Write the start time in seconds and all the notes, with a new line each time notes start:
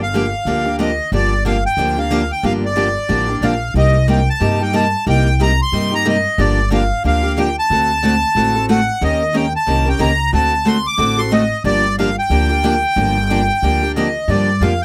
Already playing: G1
0.02 F5
0.14 D3 F3 A#3 D4 G4
0.45 D2 D3 F3 A#3 D4 G4
0.65 A#3 D4 G4
0.79 D3 F3 A#3 D4 G4 D#5
1.12 G1 D3 F3 A#3 D4 G4 D5
1.45 D3 F3 A#3 D4 G4 F5
1.66 G5
1.77 D2 D3 F3 A#3 D4 G4
1.97 A#3 D4 G4 F5
2.10 D3 F3 A#3 D4 G4
2.32 G5
2.43 G1 D3 F3 A#3 D4 G4 F5
2.65 D5
2.76 D3 F3 A#3 D4 G4
3.09 A1 D3 F3 A#3 D4 G4
3.28 A#3 D4 G4
3.41 A#1 D3 F3 A#3 D4 G4 F5
3.74 C2 C3 G3 A#3 D#4 G4 D#5
4.07 C3 G3 A#3 D#4 G4 G5
4.30 A5
4.40 G2 C3 G3 A#3 D#4 G4
4.60 A#3 D#4 G4 G5
4.73 C3 G3 A#3 D#4 G4 A5
5.06 C2 C3 G3 A#3 D#4 G4 G5
5.40 C3 G3 A#3 D#4 G4 A#5
5.62 C6
5.72 G2 C3 G3 A#3 D#4 G4
5.91 A#3 D#4 G4 A#5
6.05 C3 G3 A#3 D#4 G4 D#5
6.38 G1 D3 F3 A#3 D4 G4 D5
6.70 D3 F3 A#3 D4 G4 F5
7.04 D2 D3 F3 A#3 D4 G4 F5
7.23 A#3 D4 G4
7.37 D3 F3 A#3 D4 G4 G5
7.59 A5
7.70 D2 D3 A3 C4 F#4 A4
8.03 D3 A3 C4 F#4 A4
8.35 A1 D3 A3 C4 F#4 A4
8.55 C4 F#4 A4
8.69 D3 A3 C4 F#4 A4 F#5
9.01 D#2 D#3 A#3 C#4 G4 A#4 D#5
9.33 D#3 A#3 C#4 G4 A#4 G5
9.56 A5
9.66 C2 D#3 A#3 C#4 G4 A#4
9.85 C#4 G4 A#4 G5
9.99 C#2 D#3 A#3 C#4 G4 A#4 A#5
10.32 D2 D3 A3 C4 F#4 A4 A5
10.65 D3 A3 C4 F#4 A4 C6
10.86 D6
10.97 A1 D3 A3 C4 F#4 A4
11.17 C4 F#4 A4 C6
11.31 D3 A3 C4 F#4 A4 D#5
11.64 G1 D3 F3 A#3 D4 G4 D5
11.99 D3 F3 A#3 D4 G4 F5
12.19 G5
12.30 D2 D3 F3 A#3 D4 G4
12.50 A#3 D4 G4
12.63 D3 F3 A#3 D4 G4
12.96 G1 D3 F3 A#3 D4 G4
13.30 D3 F3 A#3 D4 G4
13.62 D2 D3 F3 A#3 D4 G4
13.83 A#3 D4 G4
13.96 D3 F3 A#3 D4 G4 D#5
14.28 G2 D3 F3 A#3 D4 G4 D5
14.61 F2 D3 F3 A#3 D4 G4 F5
14.82 G5